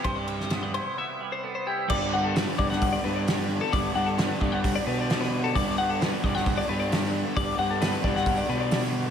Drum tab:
CC |----------------|x---------------|----------------|----------------|
RD |x-x-x-x---------|----------------|----------------|----------------|
HH |----------------|----o---o---o---|o---o---o---o---|o---o---o---o---|
SD |---oo-----------|----o--o----o---|----o-------oo--|----o--o----oo--|
BD |o---------------|o-----o-o-------|o-----o-o-------|o-----o-o-------|

CC |----------------|
RD |----------------|
HH |o---o---o---o---|
SD |----o--o----oo--|
BD |o-----o-o-------|